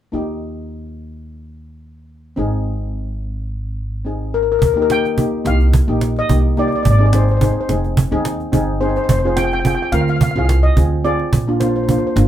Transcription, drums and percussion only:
0, 0, Header, 1, 2, 480
1, 0, Start_track
1, 0, Key_signature, -3, "major"
1, 0, Tempo, 559701
1, 116, Time_signature, 4, 2, 24, 8
1, 10530, End_track
2, 0, Start_track
2, 0, Title_t, "Cajon"
2, 3960, Note_on_c, 9, 36, 89
2, 4046, Note_off_c, 9, 36, 0
2, 4202, Note_on_c, 9, 38, 73
2, 4287, Note_off_c, 9, 38, 0
2, 4334, Note_on_c, 9, 38, 31
2, 4419, Note_off_c, 9, 38, 0
2, 4440, Note_on_c, 9, 36, 68
2, 4525, Note_off_c, 9, 36, 0
2, 4680, Note_on_c, 9, 38, 66
2, 4766, Note_off_c, 9, 38, 0
2, 4805, Note_on_c, 9, 38, 33
2, 4891, Note_off_c, 9, 38, 0
2, 4918, Note_on_c, 9, 36, 93
2, 5004, Note_off_c, 9, 36, 0
2, 5157, Note_on_c, 9, 38, 75
2, 5243, Note_off_c, 9, 38, 0
2, 5287, Note_on_c, 9, 38, 32
2, 5372, Note_off_c, 9, 38, 0
2, 5398, Note_on_c, 9, 36, 78
2, 5484, Note_off_c, 9, 36, 0
2, 5636, Note_on_c, 9, 38, 36
2, 5722, Note_off_c, 9, 38, 0
2, 5765, Note_on_c, 9, 38, 31
2, 5851, Note_off_c, 9, 38, 0
2, 5877, Note_on_c, 9, 36, 90
2, 5963, Note_off_c, 9, 36, 0
2, 6114, Note_on_c, 9, 38, 76
2, 6200, Note_off_c, 9, 38, 0
2, 6248, Note_on_c, 9, 38, 32
2, 6334, Note_off_c, 9, 38, 0
2, 6357, Note_on_c, 9, 36, 77
2, 6442, Note_off_c, 9, 36, 0
2, 6596, Note_on_c, 9, 38, 67
2, 6682, Note_off_c, 9, 38, 0
2, 6727, Note_on_c, 9, 38, 29
2, 6813, Note_off_c, 9, 38, 0
2, 6837, Note_on_c, 9, 36, 103
2, 6922, Note_off_c, 9, 36, 0
2, 7076, Note_on_c, 9, 38, 81
2, 7161, Note_off_c, 9, 38, 0
2, 7204, Note_on_c, 9, 38, 26
2, 7290, Note_off_c, 9, 38, 0
2, 7316, Note_on_c, 9, 36, 73
2, 7401, Note_off_c, 9, 36, 0
2, 7557, Note_on_c, 9, 38, 39
2, 7643, Note_off_c, 9, 38, 0
2, 7685, Note_on_c, 9, 38, 26
2, 7771, Note_off_c, 9, 38, 0
2, 7796, Note_on_c, 9, 36, 94
2, 7881, Note_off_c, 9, 36, 0
2, 8033, Note_on_c, 9, 38, 75
2, 8119, Note_off_c, 9, 38, 0
2, 8163, Note_on_c, 9, 38, 29
2, 8248, Note_off_c, 9, 38, 0
2, 8275, Note_on_c, 9, 36, 74
2, 8361, Note_off_c, 9, 36, 0
2, 8512, Note_on_c, 9, 38, 69
2, 8597, Note_off_c, 9, 38, 0
2, 8644, Note_on_c, 9, 38, 33
2, 8730, Note_off_c, 9, 38, 0
2, 8755, Note_on_c, 9, 36, 87
2, 8840, Note_off_c, 9, 36, 0
2, 8997, Note_on_c, 9, 38, 78
2, 9083, Note_off_c, 9, 38, 0
2, 9126, Note_on_c, 9, 38, 30
2, 9212, Note_off_c, 9, 38, 0
2, 9235, Note_on_c, 9, 36, 75
2, 9320, Note_off_c, 9, 36, 0
2, 9474, Note_on_c, 9, 38, 43
2, 9560, Note_off_c, 9, 38, 0
2, 9601, Note_on_c, 9, 38, 29
2, 9687, Note_off_c, 9, 38, 0
2, 9714, Note_on_c, 9, 36, 92
2, 9800, Note_off_c, 9, 36, 0
2, 9953, Note_on_c, 9, 38, 70
2, 10039, Note_off_c, 9, 38, 0
2, 10083, Note_on_c, 9, 38, 30
2, 10168, Note_off_c, 9, 38, 0
2, 10194, Note_on_c, 9, 36, 75
2, 10280, Note_off_c, 9, 36, 0
2, 10433, Note_on_c, 9, 38, 73
2, 10519, Note_off_c, 9, 38, 0
2, 10530, End_track
0, 0, End_of_file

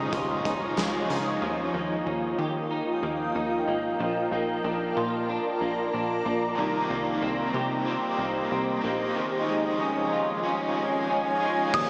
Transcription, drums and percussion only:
0, 0, Header, 1, 2, 480
1, 0, Start_track
1, 0, Key_signature, -3, "major"
1, 0, Tempo, 645161
1, 1056, Time_signature, 4, 2, 24, 8
1, 8853, End_track
2, 0, Start_track
2, 0, Title_t, "Drums"
2, 93, Note_on_c, 9, 42, 75
2, 95, Note_on_c, 9, 36, 87
2, 168, Note_off_c, 9, 42, 0
2, 169, Note_off_c, 9, 36, 0
2, 337, Note_on_c, 9, 36, 89
2, 338, Note_on_c, 9, 42, 50
2, 412, Note_off_c, 9, 36, 0
2, 412, Note_off_c, 9, 42, 0
2, 574, Note_on_c, 9, 42, 79
2, 578, Note_on_c, 9, 38, 109
2, 578, Note_on_c, 9, 54, 65
2, 648, Note_off_c, 9, 42, 0
2, 652, Note_off_c, 9, 38, 0
2, 652, Note_off_c, 9, 54, 0
2, 819, Note_on_c, 9, 42, 52
2, 893, Note_off_c, 9, 42, 0
2, 8733, Note_on_c, 9, 36, 107
2, 8733, Note_on_c, 9, 49, 99
2, 8807, Note_off_c, 9, 36, 0
2, 8808, Note_off_c, 9, 49, 0
2, 8853, End_track
0, 0, End_of_file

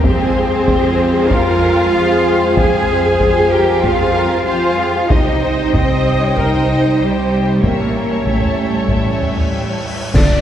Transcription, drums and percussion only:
0, 0, Header, 1, 3, 480
1, 0, Start_track
1, 0, Key_signature, -4, "minor"
1, 0, Tempo, 631579
1, 39, Time_signature, 4, 2, 24, 8
1, 7912, End_track
2, 0, Start_track
2, 0, Title_t, "Taiko and cinematic ensemble drums"
2, 37, Note_on_c, 9, 41, 96
2, 113, Note_off_c, 9, 41, 0
2, 515, Note_on_c, 9, 41, 84
2, 591, Note_off_c, 9, 41, 0
2, 992, Note_on_c, 9, 41, 78
2, 1068, Note_off_c, 9, 41, 0
2, 1954, Note_on_c, 9, 41, 99
2, 2030, Note_off_c, 9, 41, 0
2, 2434, Note_on_c, 9, 41, 74
2, 2510, Note_off_c, 9, 41, 0
2, 2914, Note_on_c, 9, 41, 84
2, 2990, Note_off_c, 9, 41, 0
2, 3877, Note_on_c, 9, 41, 98
2, 3953, Note_off_c, 9, 41, 0
2, 4358, Note_on_c, 9, 41, 84
2, 4434, Note_off_c, 9, 41, 0
2, 4841, Note_on_c, 9, 41, 75
2, 4917, Note_off_c, 9, 41, 0
2, 5801, Note_on_c, 9, 41, 86
2, 5877, Note_off_c, 9, 41, 0
2, 6278, Note_on_c, 9, 41, 71
2, 6354, Note_off_c, 9, 41, 0
2, 6395, Note_on_c, 9, 43, 49
2, 6471, Note_off_c, 9, 43, 0
2, 6753, Note_on_c, 9, 41, 73
2, 6829, Note_off_c, 9, 41, 0
2, 6996, Note_on_c, 9, 43, 48
2, 7072, Note_off_c, 9, 43, 0
2, 7116, Note_on_c, 9, 43, 44
2, 7192, Note_off_c, 9, 43, 0
2, 7711, Note_on_c, 9, 41, 101
2, 7787, Note_off_c, 9, 41, 0
2, 7912, End_track
3, 0, Start_track
3, 0, Title_t, "Drums"
3, 7715, Note_on_c, 9, 35, 73
3, 7715, Note_on_c, 9, 49, 66
3, 7791, Note_off_c, 9, 35, 0
3, 7791, Note_off_c, 9, 49, 0
3, 7912, End_track
0, 0, End_of_file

